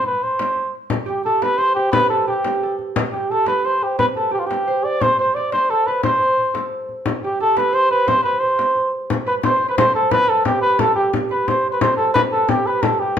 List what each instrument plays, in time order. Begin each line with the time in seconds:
0.05 muted trumpet B4, frame drum
0.23 muted trumpet C5
0.39 frame drum
0.56 frame drum
0.90 frame drum
1.06 harp G4, muted trumpet G4, frame drum
1.24 muted trumpet A4, harp A4, frame drum
1.42 harp B4, muted trumpet B4, frame drum
1.58 harp C5, muted trumpet C5
1.75 muted trumpet G4, harp G4, frame drum
1.92 muted trumpet B4, harp B4, frame drum
2.09 muted trumpet A4, harp A4, frame drum
2.27 muted trumpet G4, harp G4, frame drum
2.44 frame drum
2.63 harp A4
2.79 frame drum
2.96 frame drum
3.12 muted trumpet G4, harp G4, frame drum
3.30 muted trumpet A4, harp A4, frame drum
3.46 harp B4, muted trumpet B4, frame drum
3.65 harp C5, muted trumpet C5
3.81 muted trumpet G4, frame drum
3.99 harp B4, muted trumpet B4, frame drum
4.16 muted trumpet A4, harp A4, frame drum
4.31 harp G4, muted trumpet G4
4.39 muted trumpet F4
4.46 muted trumpet G4, harp G4
4.51 frame drum
4.68 harp C5, frame drum
4.84 muted trumpet D5, frame drum
5.01 muted trumpet C5, harp C5, frame drum
5.19 harp C5, muted trumpet C5, frame drum
5.35 muted trumpet D5, harp D5, frame drum
5.52 muted trumpet C5, harp C5, frame drum
5.70 muted trumpet A4, harp A4
5.87 muted trumpet B4, harp B4, frame drum
6.03 muted trumpet C5, harp C5, frame drum
6.21 frame drum
6.38 frame drum
6.54 harp A4, frame drum
6.89 frame drum
7.06 frame drum
7.24 harp G4, muted trumpet G4
7.40 harp A4, muted trumpet A4, frame drum
7.56 harp B4, muted trumpet B4, frame drum
7.73 harp C5, muted trumpet C5
7.91 harp B4, muted trumpet B4, frame drum
8.07 harp C5, muted trumpet C5, frame drum
8.22 harp B4, muted trumpet B4
8.39 muted trumpet C5, harp C5
8.59 frame drum
8.76 frame drum
9.10 frame drum
9.26 harp B4, muted trumpet B4
9.43 harp C5, muted trumpet C5, frame drum
9.49 harp C5
9.56 harp C5
9.68 harp B4, muted trumpet B4
9.78 muted trumpet C5, harp C5, frame drum
9.95 muted trumpet A4, harp A4, frame drum
10.11 harp B4, muted trumpet B4, frame drum
10.29 muted trumpet A4, harp A4
10.45 muted trumpet G4, harp G4, frame drum
10.62 muted trumpet B4, harp B4
10.79 harp A4, muted trumpet A4, frame drum
10.96 muted trumpet G4, harp G4, frame drum
11.13 frame drum
11.31 harp B4, muted trumpet B4
11.48 muted trumpet C5, harp C5, frame drum
11.70 muted trumpet B4 C5
11.81 muted trumpet C5, harp C5, frame drum
11.97 muted trumpet A4, harp A4, frame drum
12.14 muted trumpet B4, harp B4, frame drum
12.32 muted trumpet A4, harp A4, frame drum
12.48 harp G4, muted trumpet G4, frame drum
12.66 muted trumpet B4, harp B4
12.82 muted trumpet A4, harp A4, frame drum
12.99 muted trumpet G4, harp G4